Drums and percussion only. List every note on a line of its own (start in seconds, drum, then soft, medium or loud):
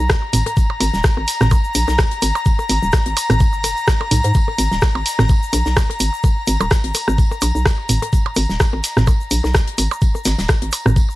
0.09 kick loud
0.09 cross-stick loud
0.09 snare loud
0.09 tambourine medium
0.09 percussion blips soft
0.09 shaker soft
0.33 mid tom medium
0.33 open hi-hat loud
0.33 tambourine medium
0.33 shaker medium
0.46 closed hi-hat soft
0.46 percussion blips soft
0.46 shaker soft
0.57 kick loud
0.57 tambourine medium
0.57 shaker medium
0.70 percussion blips medium
0.81 open hi-hat loud
0.81 tambourine medium
0.81 percussion blips soft
0.81 shaker medium
0.94 snare soft
0.94 shaker soft
1.04 kick loud
1.04 cross-stick medium
1.04 snare loud
1.04 tambourine medium
1.04 shaker medium
1.17 percussion blips soft
1.28 snare soft
1.28 open hi-hat loud
1.28 tambourine medium
1.28 shaker medium
1.41 cross-stick medium
1.41 snare soft
1.41 mid tom medium
1.41 shaker soft
1.51 kick loud
1.51 tambourine medium
1.51 percussion blips soft
1.51 percussion blips medium
1.51 shaker medium
1.64 shaker soft
1.74 open hi-hat loud
1.74 tambourine medium
1.74 shaker loud
1.88 snare soft
1.88 percussion blips soft
1.88 shaker soft
1.98 kick loud
1.98 cross-stick loud
1.98 snare loud
1.98 tambourine medium
1.98 shaker medium
2.11 closed hi-hat soft
2.22 open hi-hat loud
2.22 tambourine medium
2.22 percussion blips soft
2.22 shaker loud
2.35 percussion blips medium
2.35 shaker soft
2.45 kick loud
2.45 tambourine medium
2.45 shaker medium
2.59 percussion blips soft
2.59 shaker soft
2.69 open hi-hat medium
2.69 tambourine medium
2.69 shaker medium
2.83 shaker soft
2.92 kick loud
2.92 cross-stick medium
2.92 snare loud
2.92 tambourine medium
2.92 percussion blips soft
2.92 shaker medium
3.06 closed hi-hat soft
3.17 open hi-hat loud
3.17 tambourine medium
3.17 percussion blips medium
3.17 shaker loud
3.30 cross-stick medium
3.30 mid tom medium
3.30 open hi-hat soft
3.30 percussion blips soft
3.30 shaker soft
3.40 kick loud
3.40 tambourine medium
3.40 shaker medium
3.53 shaker soft
3.63 open hi-hat medium
3.63 tambourine medium
3.63 percussion blips soft
3.63 shaker medium
3.77 shaker soft
3.87 kick loud
3.87 cross-stick medium
3.87 snare loud
3.87 tambourine medium
3.87 shaker medium
4.01 percussion blips soft
4.01 percussion blips medium
4.11 mid tom medium
4.11 open hi-hat loud
4.11 tambourine medium
4.11 shaker medium
4.24 closed hi-hat soft
4.24 shaker soft
4.34 kick loud
4.34 tambourine medium
4.34 shaker medium
4.48 percussion blips soft
4.58 open hi-hat medium
4.58 tambourine medium
4.58 shaker medium
4.72 snare soft
4.72 shaker soft
4.82 kick loud
4.82 cross-stick medium
4.82 snare loud
4.82 tambourine medium
4.82 percussion blips soft
4.82 shaker soft
4.95 percussion blips medium
5.06 snare soft
5.06 open hi-hat medium
5.06 tambourine medium
5.06 shaker medium
5.19 cross-stick medium
5.19 snare soft
5.19 mid tom medium
5.19 percussion blips soft
5.19 shaker soft
5.29 kick loud
5.29 tambourine medium
5.29 shaker medium
5.43 shaker soft
5.53 open hi-hat medium
5.53 tambourine medium
5.53 percussion blips soft
5.53 shaker medium
5.66 snare medium
5.66 shaker soft
5.77 kick loud
5.77 cross-stick medium
5.77 snare loud
5.77 tambourine medium
5.77 percussion blips medium
5.77 shaker medium
5.90 closed hi-hat soft
5.90 percussion blips soft
6.00 open hi-hat medium
6.00 tambourine medium
6.00 shaker medium
6.14 shaker soft
6.24 kick loud
6.24 tambourine medium
6.24 percussion blips soft
6.24 shaker soft
6.47 open hi-hat medium
6.47 tambourine medium
6.47 shaker medium
6.61 percussion blips soft
6.61 percussion blips medium
6.61 shaker soft
6.71 kick loud
6.71 cross-stick medium
6.71 snare loud
6.71 tambourine medium
6.71 shaker medium
6.84 closed hi-hat soft
6.94 open hi-hat medium
6.94 tambourine medium
6.94 percussion blips soft
6.94 shaker medium
7.08 cross-stick medium
7.08 shaker soft
7.18 kick loud
7.18 tambourine medium
7.18 shaker soft
7.31 percussion blips soft
7.31 shaker soft
7.42 open hi-hat medium
7.42 tambourine medium
7.42 percussion blips medium
7.42 shaker medium
7.56 shaker soft
7.66 kick loud
7.66 cross-stick medium
7.66 snare loud
7.66 tambourine medium
7.66 percussion blips soft
7.66 shaker soft
7.89 mid tom medium
7.89 open hi-hat medium
7.89 tambourine medium
7.89 shaker medium
8.02 closed hi-hat soft
8.02 percussion blips soft
8.02 shaker soft
8.13 kick loud
8.13 tambourine medium
8.13 shaker medium
8.26 percussion blips medium
8.36 open hi-hat medium
8.36 tambourine medium
8.36 percussion blips soft
8.36 shaker medium
8.50 snare medium
8.50 shaker soft
8.60 kick loud
8.60 cross-stick medium
8.60 snare loud
8.60 tambourine medium
8.60 shaker medium
8.73 percussion blips soft
8.83 snare soft
8.83 open hi-hat medium
8.83 tambourine medium
8.83 shaker medium
8.97 cross-stick medium
8.97 snare soft
8.97 mid tom medium
8.97 shaker soft
9.07 kick loud
9.07 tambourine medium
9.07 percussion blips soft
9.07 percussion blips medium
9.07 shaker medium
9.20 shaker soft
9.31 open hi-hat medium
9.31 tambourine medium
9.31 shaker medium
9.44 snare soft
9.44 percussion blips soft
9.44 shaker soft
9.54 kick loud
9.54 cross-stick medium
9.54 snare loud
9.54 tambourine medium
9.54 shaker soft
9.67 closed hi-hat soft
9.78 open hi-hat medium
9.78 tambourine medium
9.78 percussion blips soft
9.78 shaker medium
9.91 percussion blips medium
9.91 shaker soft
10.01 kick loud
10.01 tambourine medium
10.01 shaker soft
10.15 percussion blips soft
10.15 shaker soft
10.25 snare medium
10.25 open hi-hat medium
10.25 tambourine medium
10.25 shaker medium
10.38 snare loud
10.38 tambourine medium
10.38 shaker soft
10.48 kick loud
10.48 cross-stick medium
10.48 snare loud
10.48 tambourine medium
10.48 percussion blips soft
10.48 shaker soft
10.62 closed hi-hat soft
10.72 open hi-hat medium
10.72 tambourine medium
10.72 percussion blips medium
10.72 shaker medium
10.86 cross-stick medium
10.86 mid tom medium
10.86 percussion blips soft
10.86 shaker soft
10.96 kick loud
10.96 tambourine medium
10.96 shaker soft
11.10 shaker soft